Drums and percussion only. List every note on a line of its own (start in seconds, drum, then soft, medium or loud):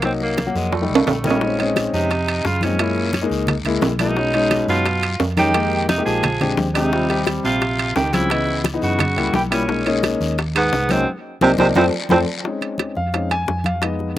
0.02 high bongo medium
0.02 high conga soft
0.02 high timbale medium
0.02 long guiro medium
0.20 high bongo soft
0.20 high conga soft
0.37 high bongo medium
0.37 high conga medium
0.37 high timbale medium
0.37 low timbale medium
0.37 short guiro medium
0.56 high bongo soft
0.56 high conga soft
0.56 short guiro medium
0.72 high bongo medium
0.72 high conga medium
0.72 high timbale medium
0.72 long guiro medium
0.95 low timbale medium
1.07 high bongo medium
1.07 low bongo medium
1.07 low conga medium
1.07 low timbale medium
1.07 short guiro medium
1.24 high bongo soft
1.24 low conga medium
1.24 short guiro medium
1.30 low timbale medium
1.41 high bongo medium
1.41 high conga soft
1.41 long guiro medium
1.59 high conga soft
1.59 high timbale medium
1.76 high bongo medium
1.76 high conga medium
1.76 high timbale medium
1.76 short guiro medium
1.93 high bongo soft
1.93 high conga soft
1.93 short guiro medium
2.10 high bongo medium
2.10 high conga soft
2.10 high timbale medium
2.10 long guiro medium
2.27 high bongo soft
2.27 high conga soft
2.27 high timbale medium
2.44 high bongo medium
2.44 low bongo medium
2.44 high conga soft
2.44 short guiro medium
2.61 high bongo soft
2.61 high conga medium
2.61 high timbale medium
2.61 short guiro medium
2.78 high bongo medium
2.78 high conga soft
2.78 high timbale loud
2.78 long guiro medium
2.96 high bongo soft
2.96 high conga soft
3.13 high bongo medium
3.13 high conga medium
3.13 high timbale medium
3.13 short guiro medium
3.30 high bongo soft
3.30 high conga soft
3.30 short guiro medium
3.47 high bongo medium
3.47 high conga soft
3.47 low conga medium
3.47 high timbale medium
3.47 long guiro medium
3.65 high conga soft
3.65 low conga medium
3.65 high timbale medium
3.81 high bongo medium
3.81 low bongo medium
3.81 high conga medium
3.81 low timbale medium
3.81 short guiro medium
3.99 high bongo soft
3.99 high conga medium
3.99 high timbale medium
3.99 short guiro medium
4.16 high bongo medium
4.16 high conga soft
4.16 long guiro medium
4.34 high conga soft
4.34 high timbale medium
4.51 high bongo medium
4.51 high conga medium
4.51 high timbale loud
4.51 short guiro medium
4.68 high bongo soft
4.68 high conga soft
4.68 short guiro medium
4.86 high bongo medium
4.86 high conga soft
4.86 high timbale medium
4.86 long guiro medium
5.02 high bongo soft
5.02 high conga soft
5.02 high timbale medium
5.20 high bongo medium
5.20 low bongo medium
5.20 high conga soft
5.20 low timbale medium
5.20 short guiro medium
5.37 high bongo soft
5.37 high conga medium
5.37 high timbale medium
5.37 short guiro medium
5.54 high bongo medium
5.54 high conga soft
5.54 high timbale loud
5.54 long guiro medium
5.71 high bongo soft
5.71 high conga soft
5.89 high bongo medium
5.89 high conga medium
5.89 high timbale medium
5.89 short guiro medium
6.06 high bongo soft
6.06 high conga soft
6.06 short guiro medium
6.23 high bongo medium
6.23 high conga soft
6.23 low conga medium
6.23 high timbale medium
6.23 long guiro medium
6.41 high conga soft
6.41 low conga medium
6.41 high timbale medium
6.57 high bongo medium
6.57 low bongo medium
6.57 high conga medium
6.57 short guiro medium
6.75 high bongo soft
6.75 high timbale medium
6.75 short guiro medium
6.92 high bongo medium
6.92 high conga soft
6.92 long guiro medium
7.09 high conga soft
7.09 high timbale medium
7.26 high bongo medium
7.26 high conga medium
7.26 high timbale medium
7.26 short guiro medium
7.43 high bongo soft
7.43 high conga soft
7.43 short guiro medium
7.61 high bongo medium
7.61 high conga soft
7.61 high timbale medium
7.61 long guiro medium
7.78 high bongo soft
7.78 high conga soft
7.78 high timbale medium
7.96 high bongo medium
7.96 low bongo medium
7.96 high conga soft
7.96 low timbale medium
7.96 short guiro medium
8.13 high bongo soft
8.13 high conga medium
8.13 high timbale medium
8.13 short guiro medium
8.30 high bongo medium
8.30 high conga soft
8.30 high timbale medium
8.30 long guiro medium
8.47 high bongo soft
8.47 high conga soft
8.64 high bongo medium
8.64 high conga medium
8.64 high timbale medium
8.64 short guiro medium
8.82 high bongo soft
8.82 high conga soft
8.82 short guiro medium
8.99 high bongo medium
8.99 high conga soft
8.99 low conga medium
8.99 high timbale loud
8.99 long guiro medium
9.17 high conga soft
9.17 high timbale medium
9.33 high bongo medium
9.33 low bongo medium
9.33 high conga medium
9.33 short guiro medium
9.52 high bongo soft
9.52 high timbale loud
9.52 short guiro medium
9.69 high bongo medium
9.69 high conga soft
9.69 long guiro medium
9.85 high conga soft
9.85 high timbale medium
10.03 high bongo medium
10.03 high conga medium
10.03 high timbale loud
10.03 short guiro medium
10.21 high bongo soft
10.21 high conga soft
10.21 short guiro medium
10.38 high bongo medium
10.38 high conga soft
10.38 high timbale medium
10.38 long guiro medium
10.55 high bongo soft
10.55 high conga soft
10.55 high timbale loud
10.72 high bongo medium
10.72 low bongo medium
10.72 high conga soft
10.72 short guiro medium
10.89 high bongo soft
10.89 high conga medium
10.89 high timbale medium
10.89 short guiro medium
11.41 low bongo loud
11.41 high conga loud
11.41 high timbale loud
11.41 long guiro loud
11.58 low bongo medium
11.58 high conga loud
11.58 high timbale medium
11.58 long guiro medium
11.75 low bongo medium
11.75 high conga loud
11.75 high timbale loud
11.75 long guiro loud
12.09 low bongo loud
12.09 high conga medium
12.09 high timbale loud
12.09 long guiro loud
12.44 high bongo medium
12.44 high conga soft
12.61 high conga soft
12.61 high timbale medium
12.78 high bongo medium
12.78 high conga medium
12.78 high timbale medium
12.95 high bongo soft
12.95 high conga soft
13.12 high bongo medium
13.12 high conga soft
13.12 high timbale medium
13.30 high bongo soft
13.30 high conga soft
13.30 high timbale medium
13.46 high bongo medium
13.46 low bongo medium
13.46 high conga soft
13.64 high bongo soft
13.64 high conga medium
13.64 high timbale medium
13.82 high bongo medium
13.82 high conga soft
13.82 high timbale loud
13.99 high bongo soft
13.99 high conga soft